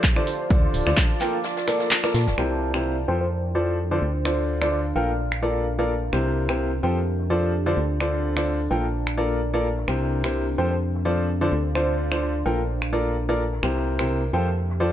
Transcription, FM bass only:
0.50 0.67 D2 loud
0.74 0.82 D1 medium
0.87 0.94 D2 medium
2.14 2.29 A#2 medium
2.27 2.34 F1 loud
2.38 3.06 C2 medium
3.08 4.00 F2 medium
4.02 4.94 D2 medium
4.96 6.11 A#1 medium
6.13 6.81 C2 medium
6.83 7.75 F2 medium
7.77 8.69 D2 medium
8.71 9.86 A#1 medium
9.88 10.56 C2 medium
10.58 11.50 F2 medium
11.52 12.44 D2 medium
12.46 13.61 A#1 medium
13.63 14.31 C2 medium
14.33 14.92 F2 medium

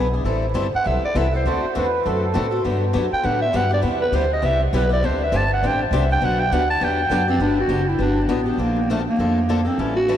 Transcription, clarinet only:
0.76 0.88 F#5 loud
0.87 1.04 E5 medium
1.05 1.19 D5 loud
1.17 1.34 E5 medium
1.36 1.46 C5 medium
3.13 3.26 G5 loud
3.25 3.41 F#5 medium
3.42 3.58 E5 loud
3.56 3.73 F#5 loud
3.73 3.80 D5 loud
4.01 4.16 B4 medium
4.15 4.32 C5 medium
4.33 4.47 D#5 loud
4.45 4.62 E5 loud
4.63 4.77 G4 medium
4.76 4.92 B4 loud
4.93 5.07 D5 loud
5.06 5.22 C5 medium
5.23 5.38 E5 loud
5.37 5.52 A5 loud
5.53 5.68 F#5 loud
5.67 5.82 G5 loud
5.83 5.97 C5 medium
5.95 6.11 E5 medium
6.12 6.26 G5 loud
6.24 6.41 F#5 loud
6.39 6.54 G5 loud
6.53 6.69 F#5 loud
6.70 6.86 A5 loud
6.84 7.29 G5 loud
7.29 7.41 C4 loud
7.42 7.58 D4 loud
7.60 7.90 F#4 medium
7.88 8.01 E4 medium
8.01 8.29 D4 medium
8.30 8.62 B3 medium
8.60 8.90 A#3 loud
8.91 8.99 A3 medium
9.10 9.69 A#3 medium
9.67 9.81 C4 medium
9.80 9.95 C#4 medium
9.96 10.17 F#4 loud

